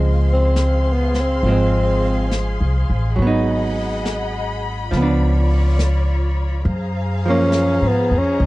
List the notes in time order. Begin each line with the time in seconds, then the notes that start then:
Already playing: C#2 F3 G#3 C4 G#4 C5 F5 C6
0.33 C4
0.56 snare, hi-hat pedal
0.93 B3
1.14 snare
1.21 C4
1.43 G#1 F3, brush sweep
1.47 G#3 C4
2.31 snare, hi-hat pedal
2.61 C2
2.90 A1
3.16 G#1 F#3 D#5 F#5 B5, brush sweep
3.22 B3
3.27 D#4
4.05 snare, hi-hat pedal
4.90 C#2 F3 F4 C#5 D5, brush sweep, snare
4.97 B3
5.02 D4
5.79 snare, hi-hat pedal
6.64 F#2 G#4 C5 F5 A#5, brush sweep
7.26 F3 A#3
7.30 C#4
7.52 snare, hi-hat pedal
7.82 G#2
7.88 B3
8.11 F2
8.19 C#4
8.39 C#2 D#5